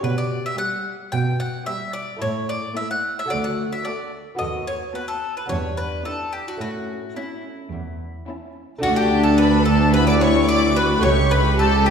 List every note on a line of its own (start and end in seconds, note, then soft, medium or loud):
0.01 0.46 B2 medium
0.01 0.46 B2 soft
0.01 2.16 G4 soft
0.01 0.16 B4 medium
0.01 2.17 D5 soft
0.18 0.43 D5 medium
0.46 0.58 E5 medium
0.56 0.98 G3 medium
0.56 0.97 G4 medium
0.56 1.09 F#5 medium
0.56 0.98 D6 soft
1.12 1.55 B2 medium
1.12 1.55 B2 soft
1.12 1.37 G5 medium
1.40 1.65 F#5 medium
1.66 2.07 G3 medium
1.66 2.07 G4 medium
1.66 1.92 E5 medium
1.66 2.07 D6 medium
1.93 2.19 D5 medium
2.17 3.24 A3 soft
2.17 3.26 E4 soft
2.17 3.27 A4 soft
2.21 2.64 A2 soft
2.21 2.65 A2 medium
2.21 2.47 C#5 medium
2.49 2.74 D5 medium
2.75 3.17 A3 medium
2.75 3.16 E4 medium
2.75 2.89 E5 medium
2.75 3.16 A5 soft
2.91 3.16 F#5 medium
3.19 3.31 E5 medium
3.26 4.34 A3 soft
3.26 4.35 F#4 soft
3.26 4.36 A4 soft
3.30 3.73 D2 soft
3.30 3.74 D2 medium
3.30 3.43 D5 medium
3.44 3.70 F#5 medium
3.73 3.85 E5 medium
3.85 4.26 A3 soft
3.85 4.27 F#4 medium
3.85 4.11 D5 medium
3.85 4.26 A5 soft
4.35 5.44 B3 soft
4.35 5.45 F#4 soft
4.35 5.46 A4 soft
4.35 4.65 D#5 medium
4.39 4.83 D#2 medium
4.39 4.83 D#2 soft
4.67 4.93 C#5 medium
4.94 5.35 B3 soft
4.94 5.36 F#4 soft
4.94 5.08 B4 medium
4.94 5.36 A5 soft
5.08 5.34 A4 medium
5.37 5.49 B4 medium
5.46 6.56 B3 soft
5.46 6.56 D4 soft
5.46 6.57 G4 soft
5.46 5.76 C#5 medium
5.50 5.94 E2 medium
5.50 5.94 E2 soft
5.77 6.04 B4 medium
6.05 6.47 D4 soft
6.05 6.47 E4 soft
6.05 6.31 A4 medium
6.05 6.47 G5 soft
6.33 6.46 G4 medium
6.48 6.60 F#4 medium
6.57 7.05 A2 medium
6.57 8.77 A3 soft
6.57 8.78 C#4 soft
6.57 8.79 E4 soft
6.61 7.04 A2 soft
6.61 7.13 F#4 medium
7.16 7.58 C#4 soft
7.16 7.58 E4 soft
7.16 8.52 E4 soft
7.16 7.58 A5 soft
7.72 8.16 E2 soft
7.72 8.16 E2 medium
8.27 8.69 C#4 soft
8.27 8.69 E4 soft
8.27 8.70 A5 soft
8.78 9.88 A3 medium
8.78 9.89 D4 medium
8.78 9.90 F#4 medium
8.82 11.00 D2 medium
8.82 9.90 D4 medium
8.82 8.96 F#4 medium
8.82 8.96 F#5 loud
8.96 9.24 G4 medium
8.96 9.23 G4 medium
8.96 9.25 G5 medium
9.23 9.38 A4 medium
9.23 9.37 A4 medium
9.23 9.40 A5 medium
9.38 9.64 B4 medium
9.38 9.66 B4 medium
9.38 9.66 B5 loud
9.65 9.93 A4 medium
9.65 9.92 A4 medium
9.65 9.93 A5 loud
9.90 10.99 B3 medium
9.90 10.99 E4 medium
9.90 10.47 E4 medium
9.90 11.00 G4 medium
9.90 10.07 B4 medium
9.90 10.07 B4 loud
9.90 10.07 B5 loud
10.07 10.21 D5 medium
10.07 10.20 D5 medium
10.07 10.13 D6 medium
10.20 10.49 C#5 medium
10.20 10.47 C#5 medium
10.20 10.48 C#6 loud
10.47 10.76 E4 medium
10.47 10.75 D5 medium
10.47 10.74 D5 medium
10.47 10.75 D6 loud
10.75 11.03 F#4 medium
10.75 10.83 B4 medium
10.75 11.02 B4 medium
10.75 11.03 B5 loud
10.99 11.90 A3 medium
10.99 11.90 E4 medium
10.99 11.90 G4 medium
10.99 11.57 G4 medium
10.99 11.29 C#5 medium
10.99 11.11 C#5 medium
10.99 11.31 C#6 loud
11.04 11.90 C#2 medium
11.30 11.39 B4 medium
11.30 11.57 B4 medium
11.30 11.58 B5 loud
11.57 11.90 G4 medium
11.57 11.86 A4 loud
11.57 11.85 A4 medium
11.57 11.85 A5 loud
11.85 11.90 G4 medium
11.85 11.90 G5 loud